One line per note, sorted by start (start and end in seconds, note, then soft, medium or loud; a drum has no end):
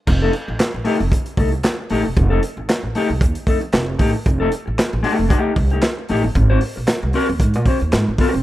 0.07 0.28 F1 loud
0.07 muted clean electric guitar stroke soft
0.07 kick loud
0.07 crash medium
0.22 0.32 A3 medium
0.22 0.33 D#4 medium
0.22 0.33 A4 medium
0.33 muted clean electric guitar stroke soft
0.33 closed hi-hat medium
0.48 0.57 A1 medium
0.48 muted clean electric guitar stroke medium
0.60 snare loud
0.60 clap medium
0.60 closed hi-hat medium
0.74 0.83 A1 medium
0.74 muted clean electric guitar stroke soft
0.85 1.00 A3 loud
0.85 0.99 D#4 loud
0.85 0.98 G4 loud
0.85 open hi-hat medium
0.99 1.09 F1 loud
0.99 muted clean electric guitar stroke soft
1.10 muted clean electric guitar stroke soft
1.10 kick medium
1.10 closed hi-hat loud
1.26 closed hi-hat medium
1.37 1.58 C2 medium
1.37 1.49 A3 medium
1.37 1.50 D#4 medium
1.37 1.50 A4 medium
1.37 kick loud
1.37 open hi-hat medium
1.52 muted clean electric guitar stroke soft
1.52 closed hi-hat soft
1.63 muted clean electric guitar stroke soft
1.63 snare medium
1.63 clap medium
1.63 closed hi-hat medium
1.79 muted clean electric guitar stroke soft
1.90 2.02 A1 medium
1.90 2.05 A3 medium
1.90 2.05 D#4 loud
1.90 2.04 G4 medium
1.90 open hi-hat medium
2.05 2.14 E1 medium
2.05 muted clean electric guitar stroke soft
2.16 2.37 F1 loud
2.16 muted clean electric guitar stroke soft
2.16 kick loud
2.16 closed hi-hat medium
2.30 2.41 A3 medium
2.30 2.42 D#4 medium
2.30 2.42 A4 medium
2.42 muted clean electric guitar stroke soft
2.42 closed hi-hat medium
2.57 2.66 G#1 medium
2.57 muted clean electric guitar stroke soft
2.69 snare loud
2.69 clap medium
2.69 closed hi-hat medium
2.83 2.92 A1 medium
2.83 muted clean electric guitar stroke soft
2.95 3.10 A3 medium
2.95 3.10 D#4 loud
2.95 3.09 G4 loud
2.95 open hi-hat medium
3.10 3.19 C2 medium
3.10 muted clean electric guitar stroke medium
3.21 3.33 D#2 medium
3.21 muted clean electric guitar stroke soft
3.21 kick loud
3.21 closed hi-hat medium
3.35 closed hi-hat medium
3.47 3.59 F2 medium
3.47 3.58 A3 medium
3.47 3.59 D#4 medium
3.47 3.59 A4 medium
3.47 kick loud
3.47 open hi-hat medium
3.61 muted clean electric guitar stroke medium
3.61 closed hi-hat soft
3.72 3.94 F1 loud
3.72 muted clean electric guitar stroke soft
3.72 snare loud
3.72 clap medium
3.72 closed hi-hat medium
3.87 muted clean electric guitar stroke soft
3.99 4.11 A1 medium
3.99 4.14 A3 medium
3.99 4.14 D#4 medium
3.99 4.13 G4 loud
3.99 kick loud
3.99 open hi-hat medium
4.14 muted clean electric guitar stroke soft
4.26 4.47 F1 loud
4.26 muted clean electric guitar stroke medium
4.26 kick loud
4.26 closed hi-hat medium
4.40 4.50 A3 medium
4.40 4.51 D#4 medium
4.40 4.52 A4 medium
4.51 muted clean electric guitar stroke soft
4.51 closed hi-hat medium
4.66 4.76 A1 medium
4.66 muted clean electric guitar stroke medium
4.79 snare loud
4.79 clap medium
4.79 closed hi-hat medium
4.92 5.02 A1 loud
4.92 muted clean electric guitar stroke soft
5.03 5.24 A3 loud
5.03 5.19 D#4 medium
5.03 5.17 G4 loud
5.03 open hi-hat medium
5.18 5.28 F1 loud
5.18 muted clean electric guitar stroke medium
5.29 5.51 A3 medium
5.29 5.51 D#4 medium
5.29 5.52 G4 loud
5.29 kick loud
5.29 closed hi-hat medium
5.56 5.77 C2 medium
5.56 muted clean electric guitar stroke soft
5.56 kick loud
5.56 open hi-hat medium
5.70 5.81 A3 soft
5.70 5.81 D#4 medium
5.70 5.80 G4 medium
5.70 closed hi-hat soft
5.81 muted clean electric guitar stroke soft
5.81 snare loud
5.81 clap medium
5.81 closed hi-hat medium
5.97 muted clean electric guitar stroke soft
6.09 6.21 A1 medium
6.09 6.24 A3 medium
6.09 6.24 D#4 loud
6.09 6.23 G4 loud
6.09 open hi-hat medium
6.24 6.33 G1 medium
6.24 muted clean electric guitar stroke soft
6.35 6.56 G#1 loud
6.35 muted clean electric guitar stroke soft
6.35 kick loud
6.35 closed hi-hat medium
6.50 6.60 C4 medium
6.50 6.61 F#4 medium
6.50 6.61 C5 medium
6.61 muted clean electric guitar stroke soft
6.61 open hi-hat medium
6.76 6.86 A#1 medium
6.76 muted clean electric guitar stroke medium
6.88 snare loud
6.88 clap medium
6.88 closed hi-hat medium
7.03 7.12 C2 loud
7.03 muted clean electric guitar stroke soft
7.13 7.29 C4 medium
7.13 7.29 F#4 loud
7.13 7.28 A#4 loud
7.13 open hi-hat medium
7.29 7.38 D#2 loud
7.29 muted clean electric guitar stroke soft
7.40 7.55 G#2 loud
7.40 muted clean electric guitar stroke medium
7.40 kick loud
7.40 closed hi-hat medium
7.54 7.64 A#2 medium
7.54 closed hi-hat medium
7.66 7.78 C4 medium
7.66 7.78 F#4 medium
7.66 7.79 C5 medium
7.66 kick loud
7.66 open hi-hat medium
7.80 7.90 D#2 medium
7.80 muted clean electric guitar stroke soft
7.80 closed hi-hat soft
7.92 8.04 G#2 loud
7.92 muted clean electric guitar stroke soft
7.92 snare loud
7.92 clap medium
7.92 closed hi-hat medium
8.07 8.17 G#1 medium
8.07 muted clean electric guitar stroke soft
8.18 8.40 C4 medium
8.18 8.33 F#4 medium
8.18 8.32 A#4 loud
8.18 kick loud
8.18 open hi-hat medium
8.33 8.43 E1 medium
8.33 muted clean electric guitar stroke soft